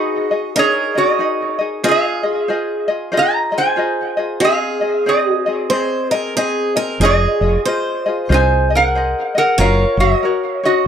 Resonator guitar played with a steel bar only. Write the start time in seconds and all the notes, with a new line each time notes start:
Already playing: F#4 D#5
0.59 G#4 C#5
0.98 F#4 D#5
1.88 G#4 F5
3.17 D#5 A#5
3.58 C5 G#5
4.44 G#4 F5
5.09 G#4 D#5
5.79 C#5
7.03 G#4 D#5
8.32 C5 G#5
8.75 A#4 F#5
9.38 A#4 F#5
9.60 A#4 F5
10.00 F#4 D#5
10.65 F#4 D#5